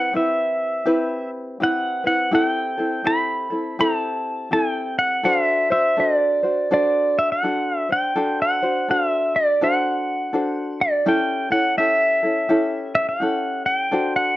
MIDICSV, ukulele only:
0, 0, Header, 1, 2, 480
1, 0, Start_track
1, 0, Tempo, 725514
1, 1538, Time_signature, 4, 2, 24, 8
1, 9505, End_track
2, 0, Start_track
2, 0, Title_t, "Ukulele"
2, 0, Program_c, 0, 24
2, 0, Note_on_c, 0, 60, 41
2, 0, Note_on_c, 0, 64, 47
2, 0, Note_on_c, 0, 71, 53
2, 83, Note_off_c, 0, 60, 0
2, 87, Note_on_c, 0, 67, 56
2, 89, Note_off_c, 0, 64, 0
2, 91, Note_on_c, 0, 60, 60
2, 92, Note_off_c, 0, 71, 0
2, 97, Note_on_c, 0, 64, 63
2, 101, Note_on_c, 0, 71, 62
2, 563, Note_off_c, 0, 67, 0
2, 565, Note_off_c, 0, 71, 0
2, 565, Note_on_c, 0, 67, 73
2, 567, Note_off_c, 0, 60, 0
2, 569, Note_off_c, 0, 64, 0
2, 570, Note_on_c, 0, 60, 79
2, 571, Note_on_c, 0, 64, 77
2, 573, Note_on_c, 0, 71, 94
2, 1055, Note_off_c, 0, 71, 0
2, 1056, Note_off_c, 0, 67, 0
2, 1058, Note_off_c, 0, 60, 0
2, 1058, Note_on_c, 0, 67, 56
2, 1060, Note_on_c, 0, 60, 61
2, 1062, Note_off_c, 0, 64, 0
2, 1065, Note_on_c, 0, 64, 59
2, 1068, Note_on_c, 0, 71, 63
2, 1341, Note_off_c, 0, 71, 0
2, 1349, Note_on_c, 0, 71, 48
2, 1351, Note_off_c, 0, 64, 0
2, 1357, Note_off_c, 0, 60, 0
2, 1359, Note_off_c, 0, 67, 0
2, 1359, Note_on_c, 0, 64, 40
2, 1365, Note_on_c, 0, 60, 44
2, 1528, Note_off_c, 0, 64, 0
2, 1529, Note_off_c, 0, 60, 0
2, 1530, Note_on_c, 0, 67, 74
2, 1533, Note_off_c, 0, 71, 0
2, 1536, Note_on_c, 0, 64, 83
2, 1537, Note_on_c, 0, 60, 74
2, 1543, Note_on_c, 0, 69, 85
2, 1828, Note_off_c, 0, 69, 0
2, 1835, Note_off_c, 0, 67, 0
2, 1836, Note_on_c, 0, 69, 48
2, 1837, Note_off_c, 0, 64, 0
2, 1839, Note_off_c, 0, 60, 0
2, 1845, Note_on_c, 0, 64, 49
2, 1850, Note_on_c, 0, 60, 49
2, 2007, Note_off_c, 0, 60, 0
2, 2012, Note_off_c, 0, 64, 0
2, 2013, Note_on_c, 0, 67, 61
2, 2014, Note_off_c, 0, 69, 0
2, 2015, Note_on_c, 0, 60, 60
2, 2020, Note_on_c, 0, 64, 60
2, 2022, Note_on_c, 0, 69, 75
2, 2308, Note_off_c, 0, 69, 0
2, 2316, Note_on_c, 0, 69, 46
2, 2317, Note_off_c, 0, 64, 0
2, 2317, Note_off_c, 0, 67, 0
2, 2318, Note_off_c, 0, 60, 0
2, 2325, Note_on_c, 0, 64, 41
2, 2332, Note_on_c, 0, 60, 39
2, 2498, Note_off_c, 0, 69, 0
2, 2502, Note_off_c, 0, 60, 0
2, 2503, Note_off_c, 0, 64, 0
2, 2507, Note_on_c, 0, 67, 72
2, 2510, Note_on_c, 0, 60, 79
2, 2512, Note_on_c, 0, 64, 80
2, 2515, Note_on_c, 0, 69, 87
2, 2975, Note_off_c, 0, 67, 0
2, 2983, Note_on_c, 0, 67, 52
2, 2984, Note_off_c, 0, 64, 0
2, 2985, Note_off_c, 0, 60, 0
2, 2987, Note_on_c, 0, 60, 63
2, 2992, Note_on_c, 0, 64, 63
2, 2993, Note_off_c, 0, 69, 0
2, 2996, Note_on_c, 0, 69, 75
2, 3460, Note_off_c, 0, 67, 0
2, 3463, Note_off_c, 0, 69, 0
2, 3463, Note_on_c, 0, 69, 74
2, 3465, Note_off_c, 0, 60, 0
2, 3468, Note_off_c, 0, 64, 0
2, 3468, Note_on_c, 0, 62, 86
2, 3472, Note_on_c, 0, 66, 89
2, 3476, Note_on_c, 0, 72, 85
2, 3764, Note_off_c, 0, 69, 0
2, 3764, Note_off_c, 0, 72, 0
2, 3767, Note_off_c, 0, 62, 0
2, 3769, Note_off_c, 0, 66, 0
2, 3772, Note_on_c, 0, 72, 58
2, 3782, Note_on_c, 0, 66, 49
2, 3785, Note_on_c, 0, 62, 43
2, 3947, Note_off_c, 0, 62, 0
2, 3948, Note_off_c, 0, 72, 0
2, 3949, Note_on_c, 0, 69, 60
2, 3953, Note_off_c, 0, 66, 0
2, 3955, Note_on_c, 0, 62, 64
2, 3961, Note_on_c, 0, 66, 56
2, 3964, Note_on_c, 0, 72, 57
2, 4246, Note_off_c, 0, 72, 0
2, 4248, Note_off_c, 0, 69, 0
2, 4251, Note_off_c, 0, 62, 0
2, 4253, Note_off_c, 0, 66, 0
2, 4254, Note_on_c, 0, 72, 41
2, 4261, Note_on_c, 0, 66, 43
2, 4267, Note_on_c, 0, 62, 35
2, 4429, Note_off_c, 0, 72, 0
2, 4433, Note_off_c, 0, 66, 0
2, 4434, Note_off_c, 0, 62, 0
2, 4438, Note_on_c, 0, 69, 76
2, 4442, Note_on_c, 0, 62, 83
2, 4445, Note_on_c, 0, 66, 79
2, 4445, Note_on_c, 0, 72, 82
2, 4913, Note_off_c, 0, 69, 0
2, 4914, Note_off_c, 0, 62, 0
2, 4916, Note_off_c, 0, 66, 0
2, 4916, Note_off_c, 0, 72, 0
2, 4916, Note_on_c, 0, 69, 57
2, 4923, Note_on_c, 0, 62, 58
2, 4927, Note_on_c, 0, 66, 58
2, 4931, Note_on_c, 0, 72, 61
2, 5212, Note_off_c, 0, 69, 0
2, 5213, Note_off_c, 0, 72, 0
2, 5215, Note_off_c, 0, 62, 0
2, 5217, Note_off_c, 0, 66, 0
2, 5221, Note_on_c, 0, 72, 50
2, 5234, Note_on_c, 0, 62, 41
2, 5392, Note_off_c, 0, 62, 0
2, 5393, Note_off_c, 0, 72, 0
2, 5396, Note_on_c, 0, 69, 72
2, 5400, Note_on_c, 0, 62, 77
2, 5404, Note_on_c, 0, 66, 72
2, 5406, Note_on_c, 0, 72, 86
2, 5692, Note_off_c, 0, 69, 0
2, 5694, Note_off_c, 0, 62, 0
2, 5696, Note_off_c, 0, 66, 0
2, 5697, Note_off_c, 0, 72, 0
2, 5706, Note_on_c, 0, 72, 52
2, 5710, Note_on_c, 0, 66, 48
2, 5718, Note_on_c, 0, 62, 44
2, 5876, Note_off_c, 0, 72, 0
2, 5877, Note_on_c, 0, 69, 57
2, 5878, Note_off_c, 0, 62, 0
2, 5878, Note_off_c, 0, 66, 0
2, 5886, Note_on_c, 0, 62, 62
2, 5891, Note_on_c, 0, 66, 62
2, 5892, Note_on_c, 0, 72, 67
2, 6356, Note_off_c, 0, 62, 0
2, 6357, Note_off_c, 0, 69, 0
2, 6359, Note_off_c, 0, 66, 0
2, 6359, Note_off_c, 0, 72, 0
2, 6359, Note_on_c, 0, 69, 70
2, 6364, Note_on_c, 0, 62, 81
2, 6365, Note_on_c, 0, 66, 76
2, 6369, Note_on_c, 0, 72, 83
2, 6831, Note_off_c, 0, 62, 0
2, 6831, Note_off_c, 0, 69, 0
2, 6834, Note_on_c, 0, 69, 62
2, 6835, Note_off_c, 0, 66, 0
2, 6837, Note_off_c, 0, 72, 0
2, 6839, Note_on_c, 0, 62, 67
2, 6844, Note_on_c, 0, 66, 63
2, 6846, Note_on_c, 0, 72, 66
2, 7311, Note_off_c, 0, 62, 0
2, 7313, Note_off_c, 0, 66, 0
2, 7313, Note_off_c, 0, 69, 0
2, 7315, Note_off_c, 0, 72, 0
2, 7316, Note_on_c, 0, 67, 75
2, 7319, Note_on_c, 0, 61, 84
2, 7320, Note_on_c, 0, 64, 89
2, 7323, Note_on_c, 0, 69, 90
2, 7603, Note_off_c, 0, 69, 0
2, 7608, Note_off_c, 0, 64, 0
2, 7609, Note_off_c, 0, 67, 0
2, 7611, Note_off_c, 0, 61, 0
2, 7611, Note_on_c, 0, 69, 53
2, 7616, Note_on_c, 0, 64, 49
2, 7623, Note_on_c, 0, 61, 47
2, 7786, Note_off_c, 0, 69, 0
2, 7788, Note_off_c, 0, 61, 0
2, 7789, Note_off_c, 0, 64, 0
2, 7790, Note_on_c, 0, 67, 63
2, 7795, Note_on_c, 0, 61, 57
2, 7799, Note_on_c, 0, 64, 61
2, 7802, Note_on_c, 0, 69, 66
2, 8082, Note_off_c, 0, 69, 0
2, 8085, Note_off_c, 0, 67, 0
2, 8088, Note_off_c, 0, 61, 0
2, 8090, Note_off_c, 0, 64, 0
2, 8090, Note_on_c, 0, 69, 43
2, 8098, Note_on_c, 0, 64, 38
2, 8104, Note_on_c, 0, 61, 34
2, 8258, Note_off_c, 0, 61, 0
2, 8260, Note_off_c, 0, 64, 0
2, 8263, Note_on_c, 0, 67, 73
2, 8265, Note_off_c, 0, 69, 0
2, 8266, Note_on_c, 0, 61, 79
2, 8268, Note_on_c, 0, 64, 88
2, 8272, Note_on_c, 0, 69, 76
2, 8725, Note_off_c, 0, 67, 0
2, 8733, Note_on_c, 0, 67, 56
2, 8734, Note_off_c, 0, 61, 0
2, 8736, Note_off_c, 0, 64, 0
2, 8742, Note_on_c, 0, 61, 65
2, 8744, Note_on_c, 0, 64, 57
2, 8746, Note_off_c, 0, 69, 0
2, 8748, Note_on_c, 0, 69, 74
2, 9203, Note_off_c, 0, 67, 0
2, 9205, Note_off_c, 0, 69, 0
2, 9205, Note_on_c, 0, 69, 72
2, 9207, Note_off_c, 0, 61, 0
2, 9210, Note_on_c, 0, 62, 84
2, 9213, Note_off_c, 0, 64, 0
2, 9215, Note_on_c, 0, 66, 85
2, 9215, Note_on_c, 0, 72, 78
2, 9501, Note_off_c, 0, 72, 0
2, 9505, Note_off_c, 0, 62, 0
2, 9505, Note_off_c, 0, 66, 0
2, 9505, Note_off_c, 0, 69, 0
2, 9505, End_track
0, 0, End_of_file